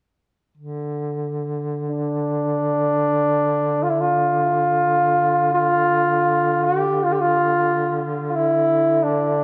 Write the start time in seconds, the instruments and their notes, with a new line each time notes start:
0.58 duduk D3
1.89 flugelhorn D4
3.83 flugelhorn F4
3.90 flugelhorn E4
4.01 flugelhorn F4
5.54 flugelhorn F4
6.64 flugelhorn G4
7.04 flugelhorn F4
7.12 flugelhorn G4
7.20 flugelhorn F4
8.28 flugelhorn F4
8.35 flugelhorn E4
9.03 flugelhorn D4